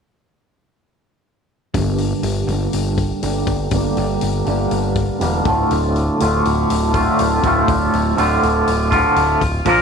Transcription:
1.74 G1 G2 D3 G3 A#3 D4 G4, kick, open hi-hat
1.98 open hi-hat
2.23 G1, open hi-hat
2.47 G1 G2 D3 G3 A#3 D4 G4, open hi-hat
2.73 G1, open hi-hat
2.98 kick, open hi-hat
3.22 G1 G2 D3 G3 A#3 D4 G4, open hi-hat
3.47 G1, kick, open hi-hat
3.71 G1 G2 D3 G3 A#3, kick, open hi-hat
3.75 D4 G4
3.97 G1, open hi-hat
4.21 G1, open hi-hat
4.45 G1 G2 D3 G3 A#3 D4 G4, open hi-hat
4.71 G1, open hi-hat
4.95 kick, open hi-hat
5.19 E1 G2 D3 G3 A#3 D4 G4, open hi-hat
5.44 D1 D2 A2 D3 A3 F4, kick, open hi-hat
5.71 D1, open hi-hat
5.96 open hi-hat
6.19 D1 D2 A2 D3 A3 F4, open hi-hat
6.45 D1, open hi-hat
6.70 D1, open hi-hat
6.94 D2 A2 D3 A3 F4, kick, open hi-hat
7.19 D1, open hi-hat
7.43 D1 D2 A2 D3 A3 F4, kick, open hi-hat
7.68 D1, kick, open hi-hat
7.93 D1, open hi-hat
8.16 D1 D2 A2 D3 A3 F4, open hi-hat
8.43 D1, open hi-hat
8.67 D1, open hi-hat
8.91 A2 D3 A3 F4, kick, open hi-hat
8.95 D2
9.16 D1, open hi-hat
9.41 D1, kick, open hi-hat
9.65 A#1 A#2 F3 A#3 F4 A#4, kick, open hi-hat

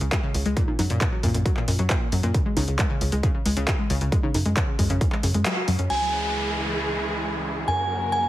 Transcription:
0.01 C#2 C#3, closed hi-hat
0.12 G#3, kick, clap, closed hi-hat
0.23 C#3
0.34 C#2 C#3, open hi-hat
0.46 C#2 G#3, closed hi-hat
0.57 A#2, kick, closed hi-hat
0.68 A#2, high conga
0.79 F#2 F#3, open hi-hat, high conga
0.90 F#2 A#2, closed hi-hat
1.01 kick, clap, closed hi-hat
1.12 F#3
1.23 F#2 A#2, kick, open hi-hat
1.34 F#2 A#2, closed hi-hat
1.46 F#3, kick, closed hi-hat
1.57 A#2, clap
1.68 F#2 A#2, open hi-hat
1.79 F#2 F#3, closed hi-hat
1.90 A#2, kick, clap, closed hi-hat
2.01 A#2
2.12 F#2 F#3, open hi-hat
2.23 F#2 A#2, closed hi-hat
2.34 C#3, kick, closed hi-hat
2.46 G#3
2.57 C#2 C#3, open hi-hat, high conga
2.68 C#2 C#3, closed hi-hat
2.79 G#3, kick, clap, closed hi-hat
2.90 C#3
3.01 C#2 C#3, open hi-hat
3.12 C#2 G#3, closed hi-hat
3.23 C#3, kick, closed hi-hat
3.34 C#3
3.46 C#2 G#3, open hi-hat
3.57 C#2 C#3, closed hi-hat
3.68 C#3, kick, clap, closed hi-hat
3.79 G#3
3.90 C#2 C#3, open hi-hat
4.01 C#2 C#3, closed hi-hat
4.12 G#3, kick, closed hi-hat
4.23 C#3, high conga
4.34 F#2 C#3, open hi-hat, high conga
4.46 F#2 G#3, closed hi-hat
4.57 C#3, kick, clap, closed hi-hat
4.68 C#3
4.79 F#2 G#3, kick, open hi-hat
4.90 F#2 C#3, closed hi-hat
5.01 C#3, kick, closed hi-hat
5.12 G#3, clap
5.23 F#2 C#3, open hi-hat
5.34 F#2 G#3, closed hi-hat
5.46 F#3, clap, closed hi-hat
5.57 F#4
5.68 F#2 F#3, open hi-hat
5.79 F#2 C#4, closed hi-hat
5.90 C#2 C#3 E3 G#3 E4 G#4 G#5, crash, downlifter
7.68 F#2 F#3 A#3 F#4 A#4 G#5
8.12 G#5

